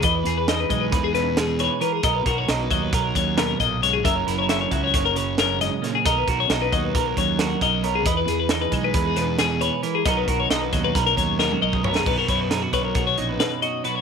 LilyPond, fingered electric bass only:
\new Staff \with { instrumentName = "Fingered electric bass" } { \clef bass \time 9/8 \key b \major \tempo 4. = 90 e,8 e,4 b,,8 e,2 r8 | b,,8 b,,8 b,,8 dis,8 b,,8 dis,4 b,,4 | fis,,8 fis,,4 cis,8 fis,,2 r8 | b,,8 b,,8 b,,8 dis,8 b,,8 dis,4 b,,4 |
e,8 e,4 b,,8 e,2 r8 | b,,8 b,,8 b,,8 dis,8 b,,8 dis,4 b,,4 | b,,16 r16 fis,4 b,,8 b,8 ais,,8 r4. | }